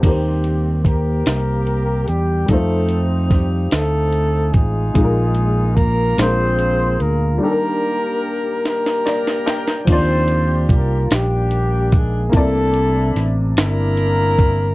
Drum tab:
CC |x-----------|------------|------------|------------|
HH |x-x-x-x-x-x-|x-x-x-x-x-x-|x-x-x-x-x-x-|------------|
SD |------o-----|----o-o-----|------o-----|------oooooo|
BD |o---o-------|o---o-----o-|o---o-------|------------|

CC |x-----------|------------|
HH |x-x-x-x-x-x-|x-x-x-x-x-x-|
SD |------o-----|----o-o-----|
BD |o---o-----o-|o---------o-|